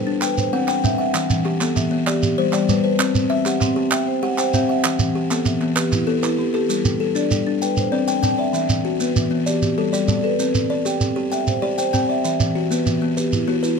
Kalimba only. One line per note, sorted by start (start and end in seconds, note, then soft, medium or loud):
0.07 0.22 D4 medium
0.22 0.67 G5 medium
0.53 0.83 C4 medium
0.53 0.97 F#5 medium
0.68 1.14 G5 medium
0.84 1.15 C4 medium
0.98 1.30 F#5 medium
1.14 1.45 E3 medium
1.45 1.92 G4 medium
1.61 1.90 B3 medium
1.91 2.07 B3 medium
2.07 2.52 D5 medium
2.38 2.68 G3 medium
2.38 2.83 C5 medium
2.54 3.00 D5 medium
2.69 3.00 G3 medium
2.84 3.15 C5 medium
2.99 3.30 C4 medium
3.30 3.76 E5 medium
3.46 3.75 G4 medium
3.76 4.07 G4 medium
3.92 4.37 G5 medium
4.23 4.54 G4 medium
4.23 4.68 F#5 medium
4.38 4.84 G5 medium
4.54 4.85 C4 medium
4.69 5.00 F#5 medium
4.84 5.15 E3 medium
5.15 5.61 G4 medium
5.31 5.60 B3 medium
5.61 5.92 B3 medium
5.76 6.22 B4 medium
6.07 6.38 B3 medium
6.07 6.53 A4 medium
6.23 6.69 B4 medium
6.38 6.69 E3 medium
6.54 6.85 A4 medium
6.69 7.00 G3 medium
7.00 7.46 A4 medium
7.15 7.45 D4 medium
7.47 7.62 D4 medium
7.62 8.06 G5 medium
7.92 8.21 C4 medium
7.92 8.37 D5 medium
8.08 8.22 G5 medium
8.23 8.54 C4 medium
8.23 8.69 G5 medium
8.38 8.69 D5 medium
8.53 8.85 E3 medium
8.85 9.31 F#4 medium
9.00 9.30 B3 medium
9.31 9.47 B3 medium
9.46 9.92 D5 medium
9.78 10.07 G3 medium
9.78 10.23 A4 medium
9.93 10.07 D5 medium
10.08 10.39 G3 medium
10.08 10.55 D5 medium
10.24 10.55 A4 medium
10.40 10.70 C4 medium
10.70 11.16 D5 medium
10.85 11.15 G4 medium
11.16 11.47 G4 medium
11.32 11.77 G5 medium
11.62 11.93 G4 medium
11.62 12.08 D5 medium
11.78 11.92 G5 medium
11.93 12.24 C4 medium
11.93 12.40 G5 medium
12.09 12.40 D5 medium
12.24 12.55 E3 medium
12.55 13.02 F#4 medium
12.71 13.01 B3 medium
13.02 13.33 B3 medium
13.17 13.62 B4 medium
13.48 13.79 B3 medium
13.48 13.79 F#4 medium
13.63 13.77 B4 medium